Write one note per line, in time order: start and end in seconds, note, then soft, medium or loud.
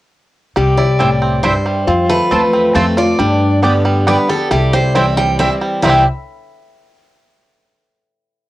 0.56 1.52 C2 medium
0.56 1.40 C3 medium
0.56 0.99 G3 medium
0.56 1.87 G4 loud
0.77 1.39 E4 medium
0.77 1.39 D5 medium
0.99 1.42 A2 medium
0.99 1.61 G3 medium
0.99 1.09 C4 loud
0.99 1.09 E4 medium
0.99 1.09 C5 loud
0.99 1.09 G5 loud
1.22 1.83 C4 medium
1.43 1.85 G2 medium
1.43 1.53 C4 loud
1.43 1.53 E4 loud
1.43 1.88 E4 medium
1.43 2.05 C5 medium
1.43 1.53 C5 loud
1.43 1.53 G5 medium
1.66 1.88 G3 medium
1.87 2.19 F2 medium
1.87 2.71 F2 medium
1.87 2.49 C4 medium
1.87 3.23 F4 loud
2.09 2.71 A3 medium
2.09 2.71 B4 medium
2.31 2.69 E2 medium
2.31 2.73 A3 medium
2.31 2.40 C4 medium
2.31 2.74 C4 medium
2.31 2.40 F4 loud
2.31 2.93 F4 medium
2.31 2.74 F4 medium
2.31 2.41 C5 medium
2.31 2.41 A5 loud
2.53 3.15 C4 medium
2.74 3.12 F2 medium
2.74 2.96 F3 medium
2.74 2.96 A3 medium
2.74 3.18 A3 medium
2.74 2.84 C4 medium
2.74 2.97 C4 medium
2.74 2.84 F4 loud
2.74 2.96 F4 medium
2.74 2.97 A4 medium
2.74 2.85 C5 loud
2.74 2.85 A5 loud
2.97 3.19 C4 medium
2.97 3.18 F4 medium
2.97 3.19 F4 medium
2.97 3.59 D5 medium
3.19 4.15 G2 medium
3.19 4.03 G2 medium
3.19 3.85 G3 medium
3.19 4.55 D4 medium
3.62 4.05 D3 medium
3.62 4.05 G3 medium
3.62 3.72 B3 medium
3.62 4.06 B3 medium
3.62 4.05 B3 medium
3.62 3.72 G4 medium
3.62 4.06 G4 medium
3.62 3.72 D5 medium
3.62 3.72 G5 loud
3.85 4.29 G3 medium
4.07 4.28 D3 medium
4.07 4.29 G3 medium
4.07 4.16 B3 loud
4.07 4.51 B3 medium
4.07 4.29 B3 medium
4.07 4.16 G4 medium
4.07 4.28 G4 medium
4.07 4.29 B4 medium
4.07 4.17 D5 loud
4.07 4.17 G5 loud
4.29 4.50 G3 medium
4.29 4.51 B3 medium
4.29 4.50 G4 medium
4.29 4.51 A4 loud
4.51 5.47 C2 medium
4.51 5.35 C3 medium
4.51 5.13 G3 medium
4.51 5.57 E4 medium
4.51 4.73 G4 medium
4.73 5.35 G4 medium
4.73 4.95 C5 medium
4.95 5.37 E3 medium
4.95 5.37 G3 medium
4.95 5.38 C4 medium
4.95 5.04 C4 medium
4.95 5.37 C4 medium
4.95 5.04 E4 medium
4.95 5.38 E4 medium
4.95 5.05 C5 medium
4.95 5.17 E5 medium
4.95 5.05 G5 loud
5.17 5.60 G3 medium
5.17 5.38 G5 loud
5.39 5.81 E3 medium
5.39 5.82 G3 medium
5.39 5.48 C4 loud
5.39 5.83 C4 medium
5.39 5.82 C4 medium
5.39 5.49 E4 loud
5.39 5.82 E4 medium
5.39 5.49 C5 medium
5.39 5.52 E5 medium
5.39 5.49 G5 loud
5.61 5.82 G3 medium
5.82 6.04 C2 medium
5.82 6.01 C3 medium
5.82 6.01 E3 medium
5.82 6.04 G3 medium
5.82 6.02 G3 medium
5.82 6.01 C4 medium
5.82 6.02 C4 medium
5.82 6.05 C4 medium
5.82 6.04 E4 medium
5.82 6.02 E4 loud
5.82 6.02 E4 medium
5.82 6.02 C5 medium
5.82 6.04 E5 medium
5.82 6.02 G5 medium
5.87 6.06 E4 medium
5.87 6.07 G4 medium